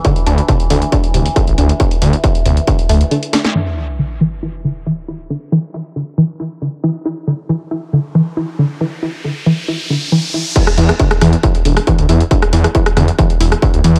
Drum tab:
CC |----------------|----------------|----------------|----------------|
HH |xxoxxxoxxxooxxox|xxoxxxoxxxoxoxox|----------------|----------------|
SD |----------------|--------------oo|----------------|----------------|
BD |o---o---o---o---|o---o---o-------|----------------|----------------|

CC |----------------|----------------|x---------------|----------------|
HH |----------------|----------------|xxoxxxoxxxooxxox|xxoxxxoxxxoxoxox|
SD |----------------|----------------|-r-r-rr----r----|-r-r-rr----r----|
BD |----------------|----------------|o---o---o---o---|o---o---o---o---|